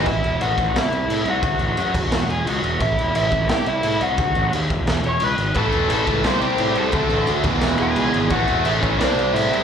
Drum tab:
CC |xxxxxxxx|xxxxxxxx|xxxxxxxx|xxxxxxxx|
SD |----o---|----o---|----o---|----o---|
BD |o--o----|o--o----|o--o----|o--o----|

CC |xxxxxxxx|xxxxxxxx|xxxxxxxx|
SD |----o---|----o---|----o---|
BD |o--o----|o--o----|o--o----|